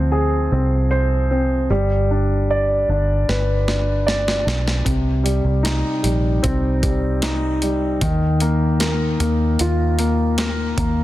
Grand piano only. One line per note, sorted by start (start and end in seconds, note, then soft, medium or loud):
0.00 1.65 F3 medium
0.00 0.52 C4 soft
0.00 0.87 C5 soft
0.12 1.66 G#4 medium
0.52 1.29 C4 soft
0.91 1.68 C5 medium
1.31 1.69 C4 soft
1.70 4.82 G3 medium
2.11 2.88 D4 soft
2.50 4.04 D5 medium
2.90 3.66 D4 soft
3.29 4.82 B4 medium
3.67 4.44 D4 soft
4.06 4.83 D5 medium
4.45 4.84 D4 soft
4.85 7.97 C3 medium
5.24 6.02 G3 soft
5.63 7.18 D#4 medium
6.03 6.81 G3 soft
6.43 7.97 C4 medium
6.83 7.60 G3 soft
7.22 7.99 D#4 medium
7.62 8.00 G3 soft
8.02 11.04 D#3 medium
8.41 9.18 A#3 medium
8.80 10.34 A#4 medium
9.20 9.97 A#3 soft
9.61 11.04 F4 medium
9.99 10.77 A#3 soft
10.38 11.04 A#4 medium
10.79 11.04 A#3 soft